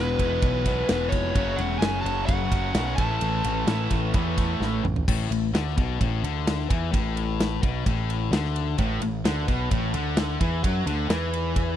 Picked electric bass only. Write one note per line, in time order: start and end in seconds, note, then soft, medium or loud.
0.00 0.16 E1 loud
0.19 0.39 E1 medium
0.42 0.82 B1 medium
0.89 1.09 E1 loud
1.12 1.32 F1 medium
1.35 1.55 F#1 loud
1.58 1.78 E1 loud
1.81 2.01 F#1 medium
2.04 2.25 F#1 medium
2.28 2.48 F#1 loud
2.51 2.71 F#1 medium
2.74 2.94 B1 loud
2.98 3.18 A1 medium
3.21 3.41 A1 loud
3.44 3.64 A1 loud
3.67 3.87 A1 medium
3.91 4.11 A1 medium
4.14 4.54 E2 loud
4.60 4.80 A1 loud
4.83 5.04 A1 medium
5.08 5.29 A1 medium
5.30 5.52 A1 medium
5.53 5.75 D2 medium
5.77 5.99 B1 loud
6.01 6.22 A1 loud
6.23 6.66 D2 medium
6.70 6.91 E2 medium
6.93 7.59 A1 loud
7.63 7.84 B1 loud
7.86 8.29 A1 medium
8.30 8.74 D2 loud
8.79 9.00 A1 loud
9.01 9.23 A1 medium
9.24 9.46 D2 medium
9.48 9.70 B1 loud
9.71 9.93 A1 medium
9.94 10.37 D2 medium
10.41 10.62 E2 medium
10.64 10.85 F#2 loud
10.86 11.08 D2 loud
11.09 11.77 E2 medium